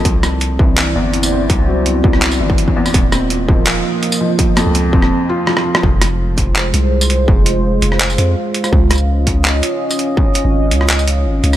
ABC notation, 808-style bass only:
X:1
M:4/4
L:1/16
Q:1/4=166
K:Fphr
V:1 name="808-style bass" clef=bass
C,,8- C,,2 =G,,,6 | C,,6 C,,4 =G,,,2 z4 | E,,,8- E,,,2 z6 | z3 D,,3 E,,,2 z8 |
F,,,8- F,,,2 C,,6 | F,,,6 F,,,4 F,,2 z4 | D,,8- D,,2 z6 | z3 A,,,3 D,,6 A,,,2 D,,2 |]